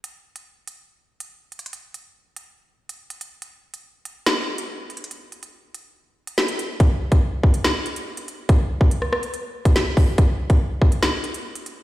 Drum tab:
HH |x--------x--------x--------------x--------x-x-x-|x-----x-----------x--------------x-----x--x-----|x--------x--------x--------------x--------x-x-x-|x-----x--x--------x--------------x-----x--x-----|
SD |------------------------------------------------|------------------------------------------------|------------------------o-----------------------|------------------------------------o-----------|
BD |------------------------------------------------|------------------------------------------------|------------------------------------------------|------------------------------------------------|

HH |x--------x-----------x--------x--x-----x--x-----|x-----------x--------x--x--------x--------o-----|x--------x-----------x--------x--x-----x--x-----|
SD |------------------------o-----------------------|---------------r--r-----------------o-----------|------------------------o-----------------------|
BD |o--------o--------o-----------------------------|o--------o-----------------------o--------o-----|o--------o--------o-----------------------------|